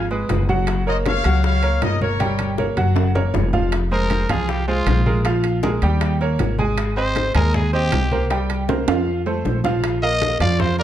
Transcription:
Already playing: upright bass G#1
0.11 grand piano G#3 G#4 B4, high bongo, high conga
0.29 upright bass F#1, high bongo, low bongo, high conga, high timbale, low timbale
0.49 grand piano F#3 F#4 F#5, high bongo, high conga
0.67 high bongo, high timbale
0.87 grand piano A#3 A#4 C#5, trumpet section C5 D#5, high bongo, high conga
1.06 trumpet section C#5 F5, high bongo, high conga, high timbale, low timbale
1.24 upright bass C#2, grand piano F#3 F#4 F#5, high bongo, high conga, high timbale
1.44 trumpet section C#5 F5, high bongo, high conga
1.63 grand piano A#3 A#4 C#5, high conga, high timbale
1.82 upright bass G1, trumpet section A#4 D#5, high bongo, low bongo, high conga, high timbale, low timbale
2.01 grand piano A#3 A#4 C#5, trumpet section A#4 C#5, high bongo, high conga
2.20 grand piano G3 G4 G5, high bongo, high conga, high timbale
2.39 high conga, high timbale
2.58 grand piano A#3 A#4 C#5, high bongo, high conga, low timbale
2.77 upright bass F#1, grand piano F#3 F#4 F#5, high bongo, high conga, high timbale
2.96 high bongo, high timbale
3.15 grand piano A#3 A#4 C#5, high bongo, low conga
3.34 upright bass F1, high bongo, low bongo, low conga, low timbale
3.53 grand piano F3 F4 F5, high bongo, low conga, low timbale
3.72 high bongo, high conga, high timbale
3.91 grand piano G#3 G#4 C5, trumpet A#4, high bongo, high conga
4.10 high bongo, high conga, high timbale, low timbale
4.29 upright bass C2, grand piano F3 F4 F5, trumpet G#4, high bongo, high conga, low conga, high timbale
4.49 trumpet G4, high bongo, high conga
4.68 grand piano G#3 G#4 C5, trumpet F4, high bongo, high conga
4.87 upright bass A#1, high bongo, low bongo, high conga, high timbale, low timbale
5.06 grand piano G#3 G#4 A#4, high conga
5.25 grand piano F3 F4 F5, high bongo, high conga, high timbale
5.44 high bongo, high conga, high timbale
5.63 grand piano G#3 G#4 A#4, high bongo, high conga, low timbale
5.82 upright bass D#2, grand piano G3 G4 G5, high bongo, high conga, high timbale
6.01 high bongo, high conga, high timbale
6.21 grand piano A#3 A#4 C#5, high bongo, high conga
6.39 upright bass G#1, high bongo, low bongo, high conga, high timbale, low timbale
6.59 grand piano G#3 G#4 G#5, high conga
6.78 high bongo, high conga, high timbale
6.97 grand piano C4 C5 D#5, trumpet C5, high bongo, high conga
7.16 high bongo, high conga, high timbale, low timbale
7.35 upright bass D#2, grand piano G#3 G#4 G#5, trumpet A#4, high bongo, high conga, low conga, high timbale
7.54 trumpet G#4, high bongo, high conga, low conga
7.73 grand piano C4 C5 D#5, trumpet G4, high bongo, high conga
7.92 upright bass C2, high bongo, low bongo, high conga, high timbale, low timbale
8.11 grand piano A#3 A#4 C5, high conga
8.30 grand piano G3 G4 G5, high bongo, high conga, high timbale
8.50 high bongo, high conga, high timbale
8.69 grand piano A#3 A#4 C5, high bongo, high conga, high timbale
8.88 upright bass F2, grand piano F3 F4 F5, high bongo, high conga, high timbale
9.07 high conga
9.26 grand piano A3 A4 C5, high conga, low timbale
9.45 upright bass A#1, low bongo, high conga, low timbale
9.64 grand piano F3 F4 F5, low bongo, high conga, low timbale
9.84 high bongo, high timbale
10.02 grand piano A#3 A#4 F5, trumpet D#5, high bongo, high conga
10.22 high bongo, high conga, high timbale, low timbale
10.40 upright bass F2, grand piano F3 F4 F5, trumpet D5, high bongo, high conga, low conga, high timbale
10.59 trumpet C5, high bongo, high conga, low conga
10.78 grand piano A#3 A#4 D5, trumpet A#4, high bongo, high conga

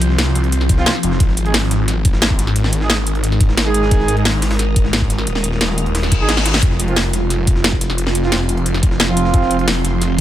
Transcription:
Already playing: detuned saw bass C2, synth drone F3 C4 F4
0.02 closed hi-hat
0.10 snare
0.18 snare, closed hi-hat
0.27 snare
0.35 detuned saw bass C2, closed hi-hat
0.44 closed hi-hat
0.52 closed hi-hat
0.61 snare
0.69 kick, closed hi-hat
0.78 brass ensemble F3 C4 F4, snare
0.86 snare, closed hi-hat
0.95 snare
1.03 detuned saw bass F1, closed hi-hat
1.12 snare
1.20 detuned saw bass G#1, synth drone G#3 D#4 A#4, kick, closed hi-hat
1.29 snare
1.37 closed hi-hat
1.46 brass ensemble G#3 D#4 G#4, closed hi-hat
1.54 snare, closed hi-hat, open hi-hat
1.71 snare, closed hi-hat
1.88 snare, closed hi-hat
2.05 kick, closed hi-hat
2.13 snare
2.22 snare, closed hi-hat
2.30 kick
2.39 snare, closed hi-hat
2.47 snare
2.56 detuned saw bass G#1, closed hi-hat
2.64 snare
2.73 closed hi-hat
2.81 brass ensemble G#3 D#4 G#4, snare
2.90 snare, closed hi-hat
2.98 snare
3.07 closed hi-hat
3.15 closed hi-hat
3.24 closed hi-hat
3.32 snare
3.41 kick, closed hi-hat
3.49 snare
3.57 snare, closed hi-hat
3.66 brass ensemble G#3 D#4 G#4, snare
3.74 closed hi-hat
3.83 snare
3.91 detuned saw bass G#1, synth drone F4, kick, closed hi-hat
4.00 snare
4.08 closed hi-hat
4.17 brass ensemble G#3 D#4 G#4, closed hi-hat
4.25 snare, closed hi-hat, open hi-hat
4.42 snare, closed hi-hat, open hi-hat
4.51 snare, open hi-hat
4.59 snare, closed hi-hat
4.76 kick, closed hi-hat
4.85 snare
4.93 snare, closed hi-hat
5.02 kick
5.10 snare, closed hi-hat
5.18 snare
5.27 detuned saw bass D#1, closed hi-hat
5.35 snare
5.44 closed hi-hat
5.52 snare
5.61 snare, closed hi-hat
5.69 snare
5.78 closed hi-hat
5.86 closed hi-hat
5.95 snare, closed hi-hat, open hi-hat, reverse cymbal
6.03 snare
6.12 detuned saw bass G#1, kick, snare, closed hi-hat
6.20 brass ensemble G#3 D#4 G#4
6.29 snare, closed hi-hat
6.37 snare
6.46 snare, closed hi-hat, open hi-hat
6.54 snare
6.62 detuned saw bass F1, synth drone F3 C4, kick, closed hi-hat
6.71 snare
6.79 closed hi-hat
6.88 brass ensemble F3 C4 F4, closed hi-hat
6.96 snare, closed hi-hat, open hi-hat
7.13 snare, closed hi-hat
7.30 snare, closed hi-hat
7.47 kick, closed hi-hat
7.56 snare
7.64 snare, closed hi-hat
7.73 kick
7.81 snare, closed hi-hat
7.90 snare
7.98 detuned saw bass F1, closed hi-hat
8.07 snare
8.15 closed hi-hat
8.24 brass ensemble F3 C4 F4, snare
8.32 snare, closed hi-hat
8.40 snare
8.49 closed hi-hat
8.57 closed hi-hat
8.66 closed hi-hat
8.74 snare
8.83 kick, closed hi-hat
8.91 snare
9.00 snare, closed hi-hat
9.08 brass ensemble F3 C4 F4, snare
9.17 closed hi-hat
9.25 snare
9.34 detuned saw bass F1, kick, closed hi-hat
9.42 snare
9.51 closed hi-hat
9.59 brass ensemble F3 C4 F4, closed hi-hat
9.68 snare, closed hi-hat, open hi-hat
9.85 snare, closed hi-hat
10.02 snare, closed hi-hat

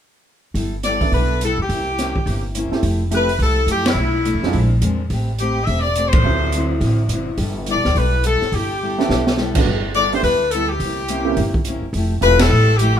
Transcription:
0.54 upright bass G1, steel-string acoustic guitar G3 B3 E4 A4, kick, open hi-hat
0.83 steel-string acoustic guitar G3 B3 E4 A4, saxophone section D5, snare, closed hi-hat
1.00 grand piano B3 D4 E4 A4, kick, open hi-hat
1.12 upright bass B1, steel-string acoustic guitar G3 B3 A4, saxophone section B4, kick, open hi-hat
1.16 steel-string acoustic guitar E4
1.41 steel-string acoustic guitar G3 B3 E4 A4, saxophone section A4, closed hi-hat
1.58 upright bass G2
1.62 saxophone section G4
1.69 upright bass C2, steel-string acoustic guitar C3 A#3 C#4, kick, open hi-hat
1.74 steel-string acoustic guitar E4
1.99 steel-string acoustic guitar C3 A#3 C#4 E4, snare, closed hi-hat
2.16 kick
2.26 upright bass G1, steel-string acoustic guitar C3 A#3 C#4 E4, kick, open hi-hat
2.55 steel-string acoustic guitar C3 A#3 C#4 E4, closed hi-hat
2.71 grand piano A3 C4 E4 G4, muted upright bass stroke, snare
2.83 upright bass F1, steel-string acoustic guitar F3 A3 E4 G4, kick, open hi-hat
3.11 steel-string acoustic guitar F3 A3 E4 G4, grand piano A3 C4 E4 G4, closed hi-hat
3.15 saxophone section B4
3.29 open hi-hat
3.39 upright bass C2, steel-string acoustic guitar F3 A3 E4, kick, open hi-hat
3.43 steel-string acoustic guitar G4, saxophone section A4
3.66 upright bass F#2, steel-string acoustic guitar F3 A3 E4 G4, closed hi-hat
3.71 saxophone section G4
3.86 saxophone section E4, snare, ride
3.95 upright bass B1, steel-string acoustic guitar B2 A3
3.99 steel-string acoustic guitar D4 E4
4.24 steel-string acoustic guitar B2 A3 D4 E4, closed hi-hat
4.34 upright bass E2
4.43 upright bass F2, grand piano G#3 C4 D4 F4, snare
4.53 upright bass A#1, steel-string acoustic guitar A#2 G#3 C4 D4, kick, open hi-hat
4.82 upright bass E2, steel-string acoustic guitar A#2 G#3 C4 D4, closed hi-hat
5.10 upright bass A1, steel-string acoustic guitar A3 C4 G4 B4, kick, open hi-hat
5.38 steel-string acoustic guitar A3 C4 G4 B4, saxophone section G4, closed hi-hat
5.65 upright bass E1, steel-string acoustic guitar A3 C4, saxophone section E5, kick, open hi-hat
5.70 steel-string acoustic guitar G4 B4
5.80 saxophone section D5
5.95 steel-string acoustic guitar A3 C4 G4 B4, closed hi-hat
6.09 saxophone section C5
6.13 upright bass A2, kick, ride
6.23 upright bass D2, steel-string acoustic guitar D3 F#3 C4 E4, grand piano F#3 A3 C4 E4
6.52 steel-string acoustic guitar D3 F#3 C4, closed hi-hat
6.56 steel-string acoustic guitar E4
6.81 upright bass A1, steel-string acoustic guitar D3 F#3 C4, kick, open hi-hat
6.85 steel-string acoustic guitar E4
7.08 upright bass F#1, steel-string acoustic guitar D3 F#3 C4, closed hi-hat
7.13 steel-string acoustic guitar E4
7.37 upright bass G1, steel-string acoustic guitar G3 B3 E4 A4, kick, open hi-hat
7.66 steel-string acoustic guitar G3 B3 E4 A4, closed hi-hat
7.71 saxophone section D5
7.75 upright bass B1
7.85 upright bass D2, snare
7.95 upright bass B1, steel-string acoustic guitar G3 B3 E4 A4, saxophone section B4, kick, open hi-hat
8.24 steel-string acoustic guitar G3 B3 E4 A4, saxophone section A4, closed hi-hat
8.42 muted upright bass stroke, snare
8.52 upright bass G1, steel-string acoustic guitar G3 B3 E4 A4, saxophone section G4, kick, open hi-hat
8.83 steel-string acoustic guitar G3 B3 E4 A4
8.98 grand piano A3 B3 D4 E4, snare
9.09 upright bass B1, steel-string acoustic guitar G3 B3 E4 A4, snare
9.27 snare
9.37 steel-string acoustic guitar G3 B3 E4 A4, snare
9.55 upright bass G#1, grand piano G2 A3 B3 D4 F#4, kick, crash
9.65 upright bass G1, steel-string acoustic guitar G3 B3 E4 A4, kick
9.94 steel-string acoustic guitar G3 B3 E4 A4, saxophone section D5, closed hi-hat
10.12 grand piano A3 B3 D4 E4 G4, saxophone section C5, open hi-hat
10.23 upright bass D2, steel-string acoustic guitar G3 B3 E4 A4, saxophone section B4, kick, open hi-hat
10.51 steel-string acoustic guitar G3 B3 E4 A4, saxophone section A4, closed hi-hat
10.70 saxophone section G4
10.80 upright bass C2, steel-string acoustic guitar C3 A#3, kick, open hi-hat
10.84 steel-string acoustic guitar C#4 E4
11.08 steel-string acoustic guitar C3 A#3 C#4 E4, closed hi-hat
11.25 grand piano A#3 C4 C#4 E4 G4
11.36 upright bass G1, steel-string acoustic guitar C3 A#3 C#4 E4, kick, open hi-hat
11.54 kick
11.65 steel-string acoustic guitar C3 A#3 C#4 E4, closed hi-hat
11.82 muted upright bass stroke
11.93 upright bass F1, steel-string acoustic guitar F3 A3 E4, kick, open hi-hat
11.98 steel-string acoustic guitar G4
12.21 upright bass E1, steel-string acoustic guitar F3 A3 E4, grand piano A3 C4 E4 F4 G4, saxophone section B4, closed hi-hat
12.25 steel-string acoustic guitar G4
12.39 saxophone section A4, snare, ride
12.50 upright bass A1, steel-string acoustic guitar F3 A3 E4 G4
12.78 steel-string acoustic guitar F3 A3 E4 G4, saxophone section G4, closed hi-hat

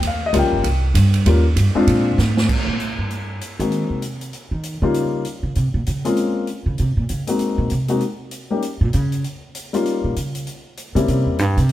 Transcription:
0.03 upright bass D#2, ride
0.07 grand piano F5
0.26 grand piano D#5
0.33 upright bass C#2, grand piano G3 A#3 C#4 F4, hi-hat pedal, ride
0.39 grand piano G5
0.43 upright bass A#1
0.52 upright bass G1, kick
0.64 upright bass C2, ride
0.94 upright bass G2, hi-hat pedal, ride
1.14 ride
1.26 upright bass D#2, grand piano G3 A#3 C#4 F4, ride
1.56 upright bass G2, hi-hat pedal, ride
1.75 grand piano G#3 C4 D4 F4, muted upright bass stroke
1.87 upright bass A#2, ride
2.18 upright bass G#2, snare, hi-hat pedal
2.37 snare
2.49 kick, crash
2.67 upright bass A#2
2.80 closed hi-hat
2.98 upright bass G2
3.10 closed hi-hat
3.41 closed hi-hat
3.59 upright bass D#3, grand piano G#3 A#3 C4 D#4 F#4, closed hi-hat
3.72 closed hi-hat
3.90 upright bass C3
4.02 closed hi-hat
4.21 closed hi-hat
4.33 closed hi-hat
4.51 upright bass D#3
4.63 closed hi-hat
4.82 upright bass C#3, grand piano G3 A#3 C#4 D#4 F4
4.94 closed hi-hat
5.25 closed hi-hat
5.43 upright bass C#3
5.55 upright bass C3, closed hi-hat
5.74 upright bass A#2
5.86 upright bass C#3, closed hi-hat
6.05 grand piano G#3 A#3 C4 C#4 F4, closed hi-hat
6.17 closed hi-hat
6.47 closed hi-hat
6.66 upright bass C#3
6.78 upright bass C3, closed hi-hat
6.97 upright bass A#2
7.09 upright bass C#3, closed hi-hat
7.27 grand piano G#3 A#3 C4 D#4 F#4, closed hi-hat
7.39 closed hi-hat
7.58 upright bass A#2
7.70 upright bass C3, closed hi-hat
7.88 grand piano G#3 A#3 C4 D#4 F#4, closed hi-hat
8.00 closed hi-hat
8.31 closed hi-hat
8.50 grand piano G3 A#3 C#4 D#4 G4
8.62 closed hi-hat
8.81 upright bass A#2
8.93 upright bass C#3, closed hi-hat
9.12 closed hi-hat
9.24 closed hi-hat
9.55 closed hi-hat
9.73 grand piano G3 A#3 C#4 D#4 F4, closed hi-hat
9.86 closed hi-hat
10.04 upright bass A#2
10.16 upright bass C#3, closed hi-hat
10.35 closed hi-hat
10.47 closed hi-hat
10.77 closed hi-hat
10.95 upright bass C#3, grand piano G3 A#3 C4 C#4 E4, closed hi-hat
11.08 upright bass C3, closed hi-hat
11.26 upright bass E2
11.39 upright bass G2, closed hi-hat
11.57 upright bass C3, closed hi-hat
11.69 closed hi-hat

